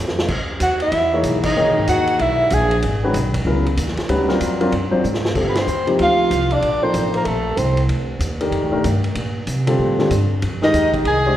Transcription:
Already playing: upright bass F2
0.08 snare
0.19 snare
0.28 upright bass C#2, kick, crash
0.60 upright bass D#2, tenor saxophone F#4, soprano saxophone F#5, hi-hat pedal, ride
0.80 tenor saxophone E4, soprano saxophone E5, ride
0.92 upright bass E2, ride
1.13 grand piano E3 A#3 D#4 G#4 C#5
1.23 upright bass B1, hi-hat pedal, ride
1.43 tenor saxophone D#4, soprano saxophone D#5, kick, crash
1.56 upright bass C#2, grand piano D#3 A#3 D#4 G#4 C#5
1.66 upright bass B1
1.77 upright bass G#1
1.87 upright bass D#2, tenor saxophone F#4, soprano saxophone F#5, hi-hat pedal, ride
2.07 ride
2.19 upright bass B1, tenor saxophone E4, soprano saxophone E5, ride
2.50 upright bass A#1, tenor saxophone G#4, soprano saxophone G#5, hi-hat pedal, ride
2.71 ride
2.82 upright bass G#1, ride
3.04 grand piano D#3 G#3 C#4 F#4 B4
3.14 upright bass B1, hi-hat pedal, ride
3.34 kick, ride
3.45 upright bass C#2, grand piano C#3 F#3 B3 E4 A#4
3.66 ride
3.77 upright bass D#2, hi-hat pedal, ride
3.88 snare
3.97 muted upright bass stroke, snare, ride
4.09 upright bass D2, grand piano G3 C#4 D#4 F#4 B4, ride
4.29 grand piano F#3 C4 D4 F4 A#4, snare
4.41 upright bass F2, hi-hat pedal, ride
4.60 grand piano F#3 C4 D4 F4 A#4, ride
4.72 upright bass F#2, ride
4.91 grand piano F#3 C4 D4 F4 C5, muted upright bass stroke
5.04 upright bass G#2, hi-hat pedal
5.14 snare
5.25 snare
5.35 upright bass G2, grand piano D3 G3 C4 F4 A4, kick, crash
5.47 tenor saxophone B3, soprano saxophone B4
5.55 tenor saxophone C4, snare, ride
5.60 soprano saxophone C5
5.67 upright bass D#2, hi-hat pedal
5.87 grand piano C3 F3 A#3 D#4 G4, ride
5.99 upright bass D2, tenor saxophone F4, soprano saxophone F5, ride
6.31 upright bass C2, hi-hat pedal, ride
6.51 tenor saxophone D4, soprano saxophone D5, ride
6.61 upright bass A#1, ride
6.82 grand piano F3 A#3 D#4 A4 C5, tenor saxophone C4, soprano saxophone C5
6.94 upright bass A1, hi-hat pedal, ride
7.14 tenor saxophone A#3, soprano saxophone A#4, ride
7.25 upright bass A#1, tenor saxophone A3, soprano saxophone A4, ride
7.57 upright bass C2, tenor saxophone C4, soprano saxophone C5, hi-hat pedal, ride
7.77 ride
7.88 upright bass D2, ride
8.19 upright bass D#2, hi-hat pedal, ride
8.41 grand piano D#3 D4 G4 A4 A#4, ride
8.51 upright bass F2, ride
8.62 upright bass D2
8.72 upright bass A#1, grand piano D#3 A3 D4 G4 A#4
8.84 upright bass G2, hi-hat pedal, ride
9.04 ride
9.15 upright bass A#2, ride
9.47 upright bass C3, hi-hat pedal, ride
9.67 grand piano D3 G3 C4 F4 A4, ride
9.79 upright bass A2
9.99 grand piano D3 G3 C4 F4 A4, snare
10.10 upright bass G2, hi-hat pedal, ride
10.42 upright bass F2, ride
10.62 grand piano D#3 G#3 D#4 G4 A#4, tenor saxophone D#4, soprano saxophone D#5, muted upright bass stroke, snare
10.73 upright bass D#2, hi-hat pedal, ride
10.94 kick, ride
11.04 upright bass C2, tenor saxophone G#4, soprano saxophone G#5, ride
11.26 grand piano G#3 D4 G4 C5 D#5

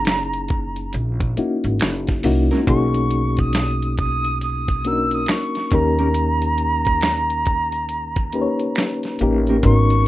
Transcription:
Already playing: upright bass F#1, reed electric piano A#3 C#4 D#4 E4 G#4, flute A#5
0.05 finger snap, snare, closed hi-hat, shaker
0.33 closed hi-hat, shaker
0.48 kick, closed hi-hat
0.76 closed hi-hat, shaker
0.93 upright bass A#1, closed hi-hat, shaker
1.20 kick, closed hi-hat, shaker
1.37 reed electric piano A#3 C#4 D#4 E4 F#4, muted upright bass stroke, closed hi-hat, shaker
1.64 upright bass G#1, closed hi-hat, shaker
1.79 upright bass F#1, finger snap, snare, closed hi-hat, shaker
2.07 kick, snare, closed hi-hat, shaker
2.23 upright bass C2, reed electric piano A#3 C#4 D#4 E4 F#4, open hi-hat
2.51 clean electric guitar G#3 C#4 E4 A#4, snare, closed hi-hat, shaker
2.67 upright bass B1, reed electric piano A#3 C#4 D#4 F#4 G#4, flute C#6, kick, closed hi-hat, shaker
2.94 closed hi-hat, shaker
3.11 closed hi-hat
3.37 flute D#6, kick, closed hi-hat, shaker
3.53 finger snap, snare, closed hi-hat, shaker
3.82 closed hi-hat, shaker
3.98 flute D#6, kick, closed hi-hat
4.25 closed hi-hat, shaker
4.41 flute D#6, closed hi-hat, shaker
4.68 kick, closed hi-hat, shaker
4.85 reed electric piano A#3 C#4 D4 F#4 A#4, flute E6, closed hi-hat, shaker
4.92 reed electric piano D#4
5.11 flute D#6, closed hi-hat, shaker
5.26 finger snap, snare, closed hi-hat, shaker
5.31 flute C#6
5.55 snare, closed hi-hat, shaker
5.71 upright bass D#2, reed electric piano A#3 C#4 D#4 G4 A#4, kick, closed hi-hat
5.75 flute A#5
5.99 clean electric guitar A#3 C#4 G4 A#4, closed hi-hat, shaker
6.14 closed hi-hat, shaker
6.42 closed hi-hat, shaker
6.58 closed hi-hat
6.85 kick, closed hi-hat, shaker
7.01 finger snap, snare, closed hi-hat, shaker
7.30 closed hi-hat, shaker
7.46 kick, closed hi-hat
7.72 closed hi-hat, shaker
7.89 closed hi-hat, shaker
8.16 kick, closed hi-hat, shaker
8.32 reed electric piano A#3 C#4 D#4 G4 B4, closed hi-hat, shaker
8.42 reed electric piano C#5
8.59 closed hi-hat, shaker
8.75 finger snap, snare, closed hi-hat, shaker
9.03 snare, closed hi-hat, shaker
9.19 upright bass A1, reed electric piano A#3 C#4 D#4 G4, closed hi-hat
9.23 reed electric piano A#4
9.47 clean electric guitar A#3 C#4 G4 A#4, closed hi-hat, shaker
9.63 upright bass G#1, reed electric piano B3 C#4 D#4 F#4 A#4, flute C#6, kick, closed hi-hat, shaker
9.90 closed hi-hat, shaker

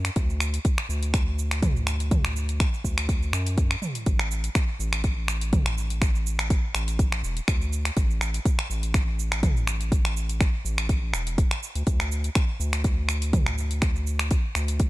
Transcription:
Already playing: analog synth bass F#2
0.05 finger snap, closed hi-hat, cabasa
0.16 analog synth bass D2, kick, closed hi-hat, cabasa
0.30 cabasa
0.40 finger snap, cabasa
0.54 closed hi-hat, cabasa
0.65 kick, closed hi-hat, cabasa
0.78 finger snap
0.89 analog synth bass D2, cabasa
1.03 closed hi-hat, cabasa
1.14 finger snap, kick, closed hi-hat, cabasa
1.39 cabasa
1.51 finger snap, closed hi-hat, cabasa
1.62 kick, closed hi-hat, mid tom, cabasa
1.76 cabasa
1.87 finger snap, cabasa
2.00 closed hi-hat, cabasa
2.11 kick, closed hi-hat, mid tom, cabasa
2.25 finger snap, cabasa
2.36 cabasa
2.49 closed hi-hat, cabasa
2.60 finger snap, kick, closed hi-hat, cabasa
2.74 cabasa
2.84 analog synth bass D2, kick, cabasa
2.98 finger snap, closed hi-hat, cabasa
3.09 kick, closed hi-hat, cabasa
3.23 cabasa
3.33 analog synth bass F#2, finger snap, cabasa
3.47 closed hi-hat, cabasa
3.58 kick, closed hi-hat, cabasa
3.71 finger snap, cabasa
3.82 mid tom, cabasa
3.95 closed hi-hat, cabasa
4.06 analog synth bass A1, kick, closed hi-hat, cabasa
4.19 finger snap, cabasa
4.31 cabasa
4.44 closed hi-hat, cabasa
4.55 finger snap, kick, closed hi-hat, cabasa
4.79 analog synth bass A1, cabasa
4.93 finger snap, closed hi-hat, cabasa
5.04 kick, closed hi-hat, cabasa
5.28 finger snap, cabasa
5.41 closed hi-hat, cabasa
5.53 kick, closed hi-hat, mid tom, cabasa
5.66 finger snap, cabasa
5.78 cabasa
5.90 closed hi-hat, cabasa
6.02 finger snap, kick, closed hi-hat, cabasa
6.15 cabasa
6.27 cabasa
6.39 finger snap, closed hi-hat, cabasa
6.50 kick, closed hi-hat, cabasa
6.75 analog synth bass A1, finger snap, cabasa
6.88 closed hi-hat, cabasa
6.99 kick, closed hi-hat, cabasa
7.12 finger snap
7.23 analog synth bass E1, cabasa
7.37 closed hi-hat, cabasa
7.48 analog synth bass D2, finger snap, kick, closed hi-hat, cabasa
7.62 cabasa
7.73 cabasa
7.85 finger snap, closed hi-hat, cabasa
7.97 analog synth bass A1, kick, closed hi-hat, cabasa
8.10 cabasa
8.21 finger snap, cabasa
8.34 closed hi-hat, cabasa
8.45 kick, closed hi-hat, cabasa
8.59 finger snap
8.70 analog synth bass A1, cabasa
8.83 closed hi-hat, cabasa
8.94 finger snap, kick, closed hi-hat, cabasa
9.19 cabasa
9.32 finger snap, closed hi-hat, cabasa
9.43 kick, closed hi-hat, mid tom, cabasa
9.57 cabasa
9.67 finger snap, cabasa
9.81 closed hi-hat, cabasa
9.92 kick, closed hi-hat, cabasa
10.05 finger snap, cabasa
10.17 cabasa
10.29 closed hi-hat, cabasa
10.41 finger snap, kick, closed hi-hat, cabasa
10.65 analog synth bass A1, cabasa
10.78 finger snap, closed hi-hat, cabasa
10.89 kick, closed hi-hat, cabasa
11.14 analog synth bass E1, finger snap, cabasa
11.27 closed hi-hat, cabasa
11.38 kick, closed hi-hat, cabasa
11.51 finger snap, cabasa
11.63 cabasa
11.75 analog synth bass D2, closed hi-hat, cabasa
11.87 analog synth bass D2, kick, closed hi-hat, cabasa
12.00 finger snap, cabasa
12.12 cabasa
12.24 closed hi-hat, cabasa
12.35 finger snap, kick, closed hi-hat, cabasa
12.60 analog synth bass D2, cabasa
12.73 finger snap, closed hi-hat, cabasa
12.84 kick, closed hi-hat, cabasa
13.09 finger snap, cabasa
13.22 closed hi-hat, cabasa
13.33 kick, closed hi-hat, mid tom, cabasa
13.46 finger snap, cabasa
13.58 cabasa
13.71 closed hi-hat, cabasa
13.82 finger snap, kick, closed hi-hat, cabasa
13.96 cabasa
14.07 cabasa
14.19 finger snap, closed hi-hat, cabasa
14.31 kick, closed hi-hat, cabasa
14.55 analog synth bass D2, finger snap, cabasa
14.68 closed hi-hat, cabasa
14.80 kick, closed hi-hat, cabasa

